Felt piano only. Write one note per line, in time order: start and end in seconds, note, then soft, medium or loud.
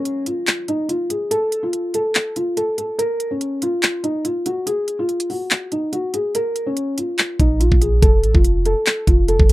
0.00 0.24 C#4 medium
0.27 0.66 F4 medium
0.69 0.88 D#4 medium
0.89 1.09 F4 medium
1.10 1.30 G#4 medium
1.31 1.61 A4 loud
1.63 1.92 F4 medium
1.95 2.34 A4 medium
2.36 2.56 F4 medium
2.57 2.76 A4 medium
2.78 2.98 A4 medium
2.99 3.29 A#4 loud
3.31 3.60 C#4 medium
3.63 4.02 F4 medium
4.04 4.24 D#4 medium
4.25 4.45 F4 medium
4.46 4.66 F#4 medium
4.66 4.97 G#4 medium
4.99 5.28 F4 medium
5.30 5.69 F#4 medium
5.72 5.92 D#4 medium
5.93 6.13 F#4 medium
6.14 6.34 G#4 medium
6.35 6.65 A#4 medium
6.66 6.96 C#4 medium
6.98 7.37 F4 medium
7.40 7.60 D#4 medium
7.60 7.80 F4 medium
7.81 8.01 G#4 medium
8.02 8.32 A4 loud
8.34 8.63 F4 medium
8.66 9.05 A4 medium
9.08 9.27 F4 medium
9.28 9.48 A4 medium
9.49 9.53 A4 medium